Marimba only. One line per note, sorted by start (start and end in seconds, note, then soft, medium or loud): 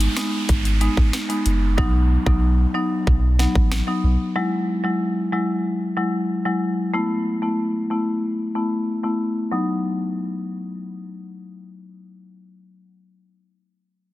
0.00 0.13 G#3 medium
0.00 0.13 B3 medium
0.00 0.13 D#4 medium
0.16 0.46 G#3 medium
0.16 0.46 B3 medium
0.16 0.46 D#4 medium
0.81 0.97 G#3 medium
0.81 0.97 B3 medium
0.81 0.97 D#4 medium
1.29 1.45 G#3 medium
1.29 1.46 B3 medium
1.29 1.46 D#4 medium
1.78 1.94 F#3 medium
1.78 1.94 B3 medium
1.78 1.94 D#4 loud
2.26 2.71 F#3 medium
2.26 2.71 B3 medium
2.26 2.71 D#4 medium
2.74 3.04 F#3 medium
2.74 3.04 B3 medium
2.74 3.04 D#4 medium
3.39 3.55 F#3 medium
3.39 3.55 B3 medium
3.39 3.55 D#4 medium
3.87 4.03 F#3 medium
3.87 4.04 B3 medium
3.87 4.04 D#4 medium
4.35 4.52 F#3 medium
4.35 4.52 G#3 medium
4.35 4.52 E4 loud
4.84 5.29 F#3 medium
4.84 5.29 G#3 medium
4.84 5.29 E4 medium
5.32 5.62 F#3 medium
5.32 5.62 G#3 medium
5.32 5.63 E4 medium
5.97 6.13 F#3 medium
5.97 6.13 G#3 medium
5.97 6.13 E4 medium
6.45 6.61 F#3 medium
6.45 6.62 G#3 medium
6.45 6.62 E4 medium
6.94 7.10 A3 medium
6.94 7.10 B3 medium
6.94 7.10 E4 loud
7.42 7.87 A3 medium
7.42 7.87 B3 medium
7.42 7.87 E4 medium
7.90 8.20 A3 medium
7.90 8.20 B3 medium
7.90 8.21 E4 medium
8.55 8.71 A3 medium
8.55 8.71 B3 medium
8.55 8.71 E4 medium
9.03 9.20 A3 medium
9.03 9.20 B3 medium
9.03 9.20 E4 medium
9.51 12.88 F#3 medium
9.51 12.88 B3 medium
9.51 12.89 D#4 medium